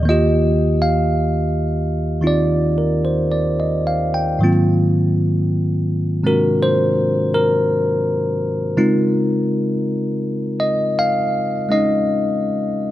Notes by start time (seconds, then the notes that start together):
0.00 D#2 D#3
0.05 A#3 F4 D#5
0.10 G4
0.82 F5
2.21 D#3 C4 D#4 F4
2.27 D5
2.78 A#4
3.05 C5
3.32 D5
3.60 D#5
3.87 F5
4.14 G5
4.39 G#2 D#3 F#3
4.43 A#3 C4 F4
6.23 C3 G#3 C4 D4 F#4 A#4
6.63 C5
7.34 A#4
8.77 C#3 G#3 C4 D#4 F4
10.60 D#5
10.99 F5
11.69 G#3 C#4 D#4 D#5